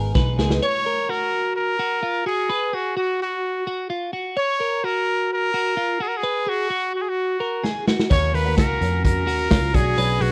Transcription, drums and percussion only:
0.15 kick, snare
0.39 snare
0.50 snare
7.64 snare
7.87 snare
7.99 snare
8.11 kick, open hi-hat
8.34 hi-hat pedal, open hi-hat
8.58 kick, snare, hi-hat pedal, open hi-hat
8.81 hi-hat pedal, open hi-hat
9.05 kick, hi-hat pedal, open hi-hat
9.28 hi-hat pedal, open hi-hat
9.51 kick, snare, hi-hat pedal, open hi-hat
9.74 kick, hi-hat pedal, open hi-hat
9.97 hi-hat pedal, open hi-hat
10.21 hi-hat pedal, open hi-hat

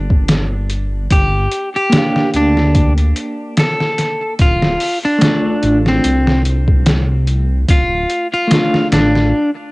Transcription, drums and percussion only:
0.10 kick
0.28 snare, closed hi-hat
0.70 closed hi-hat
1.10 kick, closed hi-hat
1.52 closed hi-hat
1.92 snare, closed hi-hat
2.16 snare
2.34 closed hi-hat
2.57 snare
2.75 kick, closed hi-hat
2.98 closed hi-hat
3.16 closed hi-hat
3.57 snare, closed hi-hat
3.80 snare
3.98 snare, closed hi-hat
4.39 kick, closed hi-hat
4.62 snare
4.80 open hi-hat
5.21 snare, closed hi-hat
5.63 closed hi-hat
5.86 snare
6.04 closed hi-hat
6.27 snare
6.45 closed hi-hat
6.68 kick
6.86 snare, closed hi-hat
7.27 closed hi-hat
7.68 kick, closed hi-hat
8.10 closed hi-hat
8.51 snare, closed hi-hat
8.74 snare
8.92 snare, closed hi-hat
9.15 snare

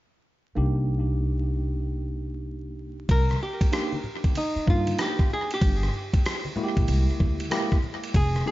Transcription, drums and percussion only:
3.09 kick, ride, shaker
3.30 cross-stick, high conga, shaker
3.41 shaker
3.61 kick, ride, shaker
3.72 cross-stick, hi-hat pedal, ride, shaker
3.92 high conga, shaker
4.04 low conga, shaker
4.24 kick, ride, shaker
4.35 ride, high conga, shaker
4.56 shaker
4.67 kick, low conga, shaker
4.87 ride, high conga, shaker
4.98 cross-stick, hi-hat pedal, ride, shaker
5.19 kick, cross-stick, shaker
5.30 low conga, shaker
5.51 ride, shaker
5.61 kick, ride, shaker
5.82 cross-stick, high conga, shaker
5.93 shaker
6.13 kick, ride, shaker
6.25 cross-stick, hi-hat pedal, ride, shaker
6.45 high conga, shaker
6.56 low conga, shaker
6.76 kick, ride, shaker
6.88 ride, high conga, shaker
7.08 shaker
7.19 kick, low conga, shaker
7.40 ride, high conga, shaker
7.51 cross-stick, hi-hat pedal, ride, shaker
7.71 kick, cross-stick, shaker
7.83 low conga, shaker
8.03 ride, shaker
8.14 kick, ride, shaker
8.35 cross-stick, high conga, shaker
8.46 shaker

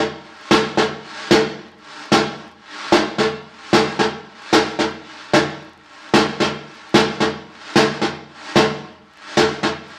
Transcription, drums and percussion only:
0.11 brush sweep
0.51 snare, hi-hat pedal
0.77 snare
0.91 brush sweep
1.31 snare, hi-hat pedal
1.72 brush sweep
2.12 snare, hi-hat pedal
2.52 brush sweep
2.92 snare, hi-hat pedal
3.18 snare
3.32 brush sweep
3.73 snare, hi-hat pedal
3.99 snare
4.13 brush sweep
4.53 snare, hi-hat pedal
4.79 snare
4.93 brush sweep
5.33 snare, hi-hat pedal
5.74 brush sweep
6.14 snare, hi-hat pedal
6.40 snare
6.54 brush sweep
6.94 snare, hi-hat pedal
7.20 snare
7.35 brush sweep
7.76 snare, hi-hat pedal
8.01 snare
8.15 brush sweep
8.56 snare, hi-hat pedal
8.96 brush sweep
9.37 snare, hi-hat pedal
9.63 snare
9.77 brush sweep

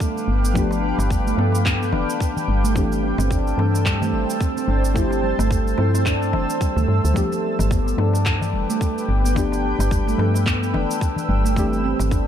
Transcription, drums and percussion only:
0.00 kick, cabasa
0.18 cabasa
0.43 darbuka ka, cabasa
0.55 kick, cabasa
0.71 darbuka tek, cabasa
0.99 darbuka ka, darbuka tek, cabasa
1.11 kick, cabasa
1.27 cabasa
1.39 darbuka tek
1.52 darbuka ka, cabasa
1.66 kick, clap, cabasa
1.83 cabasa
1.93 darbuka tek, darbuka dum
2.10 cabasa
2.20 kick, cabasa
2.37 darbuka dum, cabasa
2.65 cabasa
2.76 kick, cabasa
2.92 cabasa
3.18 darbuka ka, darbuka tek, darbuka dum, cabasa
3.31 kick, cabasa
3.47 cabasa
3.59 darbuka tek
3.74 darbuka ka, cabasa
3.86 kick, clap, cabasa
4.02 darbuka dum, cabasa
4.30 cabasa
4.41 kick, cabasa
4.57 cabasa
4.85 darbuka ka, cabasa
4.96 kick, cabasa
5.11 darbuka tek, cabasa
5.39 darbuka ka, darbuka tek, cabasa
5.51 kick, cabasa
5.67 cabasa
5.78 darbuka tek
5.95 darbuka ka, cabasa
6.06 kick, clap, cabasa
6.22 cabasa
6.33 darbuka tek, darbuka dum
6.50 cabasa
6.61 kick, cabasa
6.77 darbuka dum, cabasa
7.05 cabasa
7.16 kick, cabasa
7.32 cabasa
7.59 darbuka ka, darbuka tek, darbuka dum, cabasa
7.71 kick, cabasa
7.88 cabasa
7.98 darbuka tek
8.14 darbuka ka, cabasa
8.26 kick, clap, cabasa
8.41 darbuka dum, cabasa
8.70 cabasa
8.81 kick, cabasa
8.98 cabasa
9.24 darbuka ka, cabasa
9.36 kick, cabasa
9.52 darbuka tek, cabasa
9.79 darbuka ka, darbuka tek, cabasa
9.91 kick, cabasa
10.08 cabasa
10.19 darbuka tek
10.34 darbuka ka, cabasa
10.46 kick, clap, cabasa
10.63 cabasa
10.74 darbuka tek, darbuka dum
10.91 cabasa
11.01 kick, cabasa
11.16 darbuka dum, cabasa
11.46 cabasa
11.56 kick, cabasa
11.73 cabasa
11.99 darbuka ka, darbuka tek, darbuka dum, cabasa
12.11 kick, cabasa

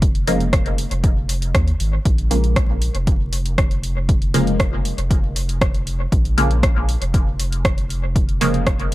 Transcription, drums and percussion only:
0.02 kick, closed hi-hat
0.15 closed hi-hat
0.27 open hi-hat
0.40 closed hi-hat
0.53 kick, cross-stick, closed hi-hat
0.66 closed hi-hat
0.78 open hi-hat
0.91 closed hi-hat
1.04 kick, closed hi-hat
1.29 open hi-hat
1.42 closed hi-hat
1.55 kick, cross-stick, closed hi-hat
1.67 closed hi-hat
1.80 open hi-hat
2.05 kick, closed hi-hat
2.18 closed hi-hat
2.31 open hi-hat
2.44 closed hi-hat
2.56 kick, cross-stick, closed hi-hat
2.82 open hi-hat
2.95 closed hi-hat
3.07 kick, closed hi-hat
3.33 open hi-hat
3.45 closed hi-hat
3.58 kick, cross-stick, closed hi-hat
3.71 closed hi-hat
3.83 open hi-hat
4.09 kick, closed hi-hat
4.22 closed hi-hat
4.34 open hi-hat
4.47 closed hi-hat
4.60 kick, cross-stick, closed hi-hat
4.85 open hi-hat
4.98 closed hi-hat
5.11 kick, closed hi-hat
5.36 open hi-hat
5.49 closed hi-hat
5.61 kick, cross-stick, closed hi-hat
5.74 closed hi-hat
5.87 open hi-hat
6.12 kick, closed hi-hat
6.25 closed hi-hat
6.38 open hi-hat
6.51 closed hi-hat
6.63 kick, cross-stick, closed hi-hat
6.89 open hi-hat
7.02 closed hi-hat
7.14 kick, closed hi-hat
7.39 open hi-hat
7.52 closed hi-hat
7.65 kick, cross-stick, closed hi-hat
7.78 closed hi-hat
7.90 open hi-hat
8.16 kick, closed hi-hat
8.29 closed hi-hat
8.41 open hi-hat
8.54 closed hi-hat
8.66 kick, cross-stick, closed hi-hat
8.79 closed hi-hat

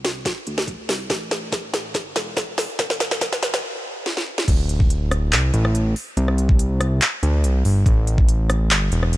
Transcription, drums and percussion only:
0.05 snare, closed hi-hat
0.25 kick, snare, closed hi-hat
0.47 closed hi-hat
0.58 snare
0.68 kick, closed hi-hat
0.89 snare, open hi-hat
1.10 kick, snare, closed hi-hat
1.31 snare, closed hi-hat
1.52 kick, snare, closed hi-hat
1.74 snare, closed hi-hat
1.94 kick, snare, closed hi-hat
2.16 snare, closed hi-hat
2.37 kick, snare, closed hi-hat
2.58 snare, open hi-hat
2.79 kick, snare, closed hi-hat
2.90 snare
3.00 snare, closed hi-hat
3.11 snare
3.21 kick, snare, closed hi-hat
3.33 snare
3.43 snare, closed hi-hat
3.54 snare
4.06 snare
4.17 snare
4.38 snare
4.48 kick, closed hi-hat, crash
4.69 closed hi-hat
4.80 kick
4.90 closed hi-hat
5.11 cross-stick, closed hi-hat
5.33 clap, closed hi-hat
5.54 closed hi-hat
5.65 cross-stick
5.75 closed hi-hat
5.96 open hi-hat
6.17 closed hi-hat
6.28 cross-stick
6.38 closed hi-hat
6.49 kick
6.59 closed hi-hat
6.81 cross-stick, closed hi-hat
7.02 clap, closed hi-hat
7.23 closed hi-hat
7.44 closed hi-hat
7.65 open hi-hat
7.86 kick, closed hi-hat
8.07 closed hi-hat
8.18 kick
8.29 closed hi-hat
8.50 cross-stick, closed hi-hat
8.71 clap, closed hi-hat
8.92 closed hi-hat
9.03 cross-stick
9.13 closed hi-hat

